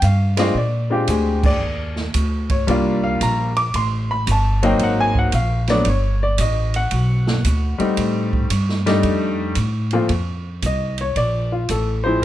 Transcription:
0.02 G2 F5, kick, hi-hat pedal, ride
0.37 G#3 C4 D4 F4 D#5, snare, ride
0.55 A#2 D5, kick
0.90 G#3 C4 D4 F4 G4
1.08 D2 G#4, kick, hi-hat pedal, ride
1.43 D5, kick, crash
1.60 D#2
1.96 snare
2.14 D2, kick, hi-hat pedal, ride
2.50 C#5, kick, ride
2.67 C2 G3 A#3 D4 F4 D5, kick, ride
3.04 F5
3.21 A#1 A#5, kick, hi-hat pedal, ride
3.56 D6, ride
3.74 A1 C6, kick, ride
4.11 B5
4.27 G1, kick, hi-hat pedal, ride
4.32 A5
4.63 F#3 A#3 C4 D#4 G5, ride
4.79 G#1, kick, ride
4.83 F#5
5.00 G#5
5.15 F#5, kick
5.32 A#1 F5, kick, hi-hat pedal, ride
5.67 F#3 A3 B3 D4 D5, snare, ride
5.85 G1, kick, ride
5.89 C#5
6.23 D5
6.38 A1 D#5, kick, hi-hat pedal, ride
6.74 F#5, ride
6.91 B1, kick, ride
7.27 snare
7.44 D2, kick, hi-hat pedal, ride
7.78 G3 A3 C4 D#4, muted upright bass stroke, ride
7.97 A2, kick, ride
8.33 kick
8.50 G2, kick, hi-hat pedal, ride
8.69 snare
8.86 G3 A3 D4 D#4, snare, ride
9.03 F2, kick, ride
9.55 A2, kick, hi-hat pedal, ride
9.91 A#2 F3 A3 C4, ride
9.95 F4
10.09 F2, kick, ride
10.62 C2 D#5, kick, hi-hat pedal, ride
10.98 C#5, ride
11.16 A#1 D5, kick, ride
11.52 F4
11.69 A1 A4, kick, hi-hat pedal, ride
12.04 F3 G#3 C4 E4 C5

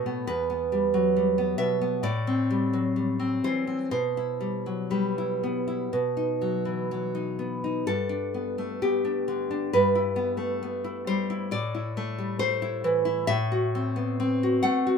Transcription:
Already playing: A2 B2 A3
0.06 B3
0.27 E2 B4
0.50 B3
0.72 G3
0.94 F#3
1.16 G3
1.38 B3
1.58 B2 E5
1.81 B3
2.03 A2 D5
2.27 C4
2.50 G3
2.73 F#3
2.96 G3
3.20 C4
3.44 E3 C5
3.67 C4
3.91 B2 C5
4.17 E4
4.40 G3
4.66 F#3
4.91 G3 B4
5.18 E4
5.43 B3
5.68 E4
5.93 B2
6.17 D#4
6.41 F#3
6.65 E3
6.91 F#3
7.15 D#4
7.39 B3
7.64 D#4
7.87 G2 A4
8.09 D4
8.34 B3
8.58 A3
8.82 B3 G4
9.05 D4
9.28 D3
9.51 D4
9.73 G2 B4
9.95 E4
10.16 B3
10.37 A3
10.63 B3
10.84 E4
11.07 G3 C5
11.30 E4
11.51 A2 D5
11.75 E4
11.97 A3
12.18 G3
12.39 A3 C5
12.62 E4
12.84 E3
13.05 E4
13.27 A2 E5
13.52 F#4
13.75 C4
13.96 B3
14.20 C4
14.43 F#4
14.63 A3 F#5
14.87 F#4

